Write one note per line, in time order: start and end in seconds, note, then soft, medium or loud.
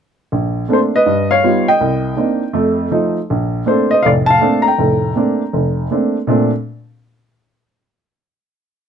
0.32 0.64 A#1 medium
0.68 0.93 A3 soft
0.68 0.94 A#3 soft
0.68 0.94 C4 soft
0.68 0.94 D4 soft
0.68 0.76 A4 medium
0.73 0.78 C5 medium
0.96 1.29 B4 medium
0.96 1.29 D#5 medium
1.06 1.38 G2 medium
1.31 1.65 C#5 medium
1.31 1.68 F5 medium
1.44 1.68 G3 medium
1.44 1.68 B3 soft
1.44 1.68 D#4 soft
1.44 1.69 F4 medium
1.68 3.13 D#5 medium
1.68 3.13 G5 medium
1.81 2.13 C2 medium
2.17 2.42 A#3 medium
2.17 2.42 C4 soft
2.17 2.42 D4 soft
2.17 2.43 D#4 medium
2.53 2.87 F2 medium
2.53 2.86 A3 medium
2.91 3.17 F3 medium
2.91 3.17 A3 soft
2.91 3.17 D#4 medium
3.30 3.62 A#1 medium
3.66 3.91 A3 medium
3.66 3.91 A#3 soft
3.66 3.92 C4 soft
3.66 3.92 D4 medium
3.66 3.90 A4 medium
3.66 3.89 C5 medium
3.91 4.05 C5 medium
3.91 4.03 D#5 medium
4.03 4.37 F1 medium
4.03 4.37 A2 medium
4.03 4.11 D5 medium
4.03 4.08 F5 medium
4.26 4.62 A5 loud
4.30 4.64 F5 medium
4.41 4.66 A3 medium
4.41 4.67 A#3 soft
4.41 4.67 C4 soft
4.41 4.67 D4 medium
4.62 5.85 A#5 medium
4.68 5.88 G5 medium
4.78 5.11 F1 medium
4.78 5.11 A2 medium
5.16 5.41 A3 soft
5.16 5.41 A#3 soft
5.16 5.41 C4 soft
5.16 5.42 D4 medium
5.53 5.86 F1 medium
5.91 6.16 A3 soft
5.91 6.16 A#3 soft
5.91 6.17 C4 soft
5.91 6.16 D4 medium
6.27 6.49 A#2 medium
6.27 6.50 A3 medium
6.27 6.50 C4 medium
6.27 6.50 D4 medium